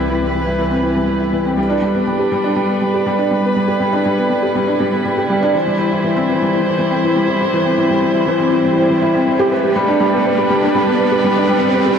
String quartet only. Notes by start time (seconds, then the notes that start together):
Already playing: G3 E4 B4
1.58 G3 D4 B4
3.56 E4
5.55 C5
9.50 D4 B4